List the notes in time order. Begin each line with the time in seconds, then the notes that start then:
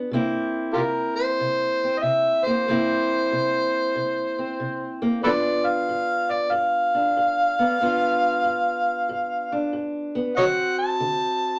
Already playing: F4
0.11 C3 A#3 C4 E4
0.73 C3 F4 G4 A#4
1.16 C5
1.40 C3
1.84 C4
1.98 D#5
2.03 C3 E5
2.44 A#3 C5
2.68 C3 A#3 C4 E4
3.32 C3
3.96 C3
4.39 C4
4.60 C3
5.02 A#3
5.23 G2 B3 D4 F4 A4 B4 D5
5.66 F5
5.89 G2
6.31 D5
6.52 G2 F5
6.95 D4
7.17 G2
7.59 B3
7.81 G2 B3 D4 F4
8.44 G2
9.09 G2
9.52 D4
9.73 G2
10.15 B3
10.37 D3 C4 F#4 C#5 D#5 F#5
10.79 A5
11.00 D3